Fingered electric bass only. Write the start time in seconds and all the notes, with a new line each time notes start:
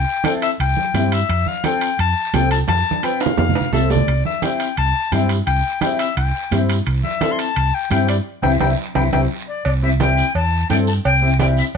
0.60 C2
0.94 G2
1.29 F2
1.99 F2
2.34 C2
2.68 F2
3.38 F2
3.73 C2
4.07 C2
4.78 C2
5.12 G2
5.47 C2
6.17 C2
6.52 G2
6.87 C2
7.56 C2
7.91 G2
8.43 C2
8.61 C2
8.96 C2
9.13 C2
9.65 C2
10.35 E2
10.70 G2
11.05 C2